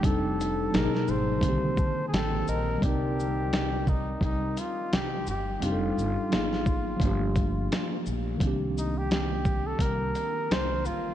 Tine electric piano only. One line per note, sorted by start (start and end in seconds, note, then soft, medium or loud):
0.01 0.72 G3 medium
0.01 0.73 C4 medium
0.01 0.73 D4 medium
0.05 0.74 D#4 medium
0.05 0.75 A4 medium
0.71 1.43 B2 medium
0.71 1.42 F#3 medium
0.71 1.40 A#3 medium
0.71 1.44 D#4 medium
0.76 1.44 G#4 medium
1.38 2.77 D#3 medium
1.38 2.79 A#3 medium
1.44 2.81 D3 medium
1.44 2.79 C4 medium
1.49 2.83 G4 medium
1.79 2.11 A5 medium
2.14 2.46 G5 medium
2.49 2.81 D#5 medium
2.78 5.55 G3 medium
2.78 5.56 C4 medium
2.83 5.59 D#4 medium
2.83 5.58 D5 medium
2.88 5.60 A#4 medium
5.60 6.31 G3 medium
5.60 6.31 C4 medium
5.60 6.32 D4 medium
5.60 6.33 D#4 medium
5.66 5.71 G4 medium
5.72 6.36 A4 medium
6.30 7.00 F#3 soft
6.30 7.00 A#3 medium
6.30 7.01 B3 medium
6.30 7.02 D#4 medium
6.35 7.03 G#4 medium
6.96 8.35 F3 medium
6.96 8.36 A3 medium
7.02 8.38 A#3 medium
7.02 8.39 D4 medium
7.07 8.41 G4 medium
8.37 11.14 D#3 medium
8.37 11.14 A#3 medium
8.42 11.14 C4 medium
8.42 11.14 D4 medium
8.47 11.14 G4 medium